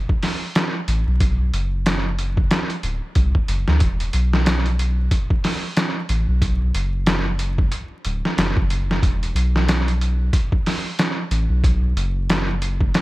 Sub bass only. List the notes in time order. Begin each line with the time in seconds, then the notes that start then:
0.88 A1
1.07 B1
1.53 F#1
2.83 D1
3.16 C2
3.48 F#1
3.68 D2
3.81 E1
4.14 B1
6.09 A1
6.28 B1
6.75 F#1
8.05 D1
8.38 F#1
8.57 F#1
9.03 E1
9.35 B1
11.31 A1
11.50 B1
11.96 F#1